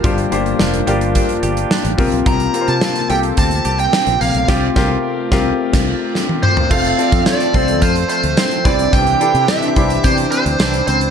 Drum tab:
CC |----------------|----------------|x--------x------|x---------------|
HH |xxxx-xxxxxxx-xox|xxxx-xxxxxxx-xox|----------------|-xxx-xxxxxxx-xxx|
TB |----------------|----------------|----------------|----x-------x---|
SD |----o-------o---|----o-------o---|o-o---o--o--o---|----o-------o---|
T1 |----------------|----------------|-------------o--|----------------|
T2 |----------------|----------------|--------------o-|----------------|
FT |----------------|----------------|---------------o|----------------|
BD |o-------o-----o-|o-------o-------|o-o---o--o------|o--o--o-o-----o-|

CC |----------------|
HH |xxxx-xxxxxxx-xxx|
TB |----x-------x---|
SD |----o-------o---|
T1 |----------------|
T2 |----------------|
FT |----------------|
BD |o-----o-o-------|